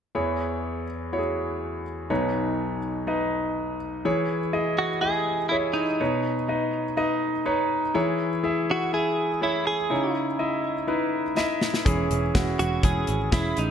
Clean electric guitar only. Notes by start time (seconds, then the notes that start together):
4.79 F#4
5.01 G#4
5.49 E4
5.73 D#4
8.71 F#4
8.94 G#4
9.43 E4
9.67 G#4
12.59 F#4
12.85 G#4
13.33 E4
13.59 D#4